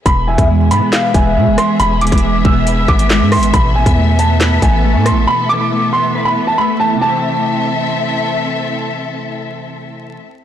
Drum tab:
HH |x-----x-----x---x---x-------x---|x---xxxx--------x-----x-----o-x-|x-----x-----x---x---x-------x---|--------------------------------|
CP |----------------x---------------|------------------------x-------|----------------x---------------|--------------------------------|
SD |----------------o-----------r---|------------------------o---r---|----------------o-----------r---|--------------------------------|
BD |o-----o-------------o-----------|------o-----o-------o-----------|o-----o-------------o-----------|--------------------------------|

HH |--------------------------------|--------------------------------|
CP |--------------------------------|--------------------------------|
SD |--------------------------------|--------------------------------|
BD |--------------------------------|--------------------------------|